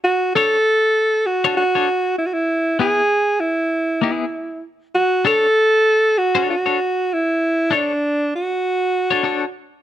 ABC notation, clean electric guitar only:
X:1
M:4/4
L:1/16
Q:"Swing 16ths" 1/4=98
K:Dlyd
V:1 name="Clean electric guitar"
z2 [DAc] z6 [DAc] z [DAc] z4 | z2 [B,EG] z6 z [B,EG] z4 z | z2 [DAc] z6 [DAc] z [DAc] z4 | z2 [DAc] z8 [DAc] [DAc] z3 |]